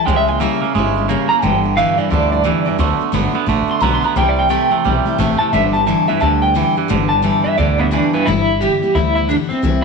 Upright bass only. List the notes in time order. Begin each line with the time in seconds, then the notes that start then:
0.07 C#2
0.62 muted upright bass stroke
0.75 G1
1.30 muted upright bass stroke
1.43 G1
1.98 muted upright bass stroke
2.11 D2
2.67 muted upright bass stroke
2.78 D2
3.00 muted upright bass stroke
3.12 G1
3.34 muted upright bass stroke
3.47 A1
3.67 muted upright bass stroke
3.81 B1
4.02 muted upright bass stroke
4.16 C2
4.72 muted upright bass stroke
4.85 B1
5.05 muted upright bass stroke
5.18 A1
5.40 muted upright bass stroke
5.53 G1
6.09 muted upright bass stroke
6.22 D2
6.78 muted upright bass stroke
6.90 G1
7.45 muted upright bass stroke
7.58 D2
8.14 muted upright bass stroke
8.27 G1
8.83 muted upright bass stroke
8.95 D2
9.50 muted upright bass stroke
9.63 C2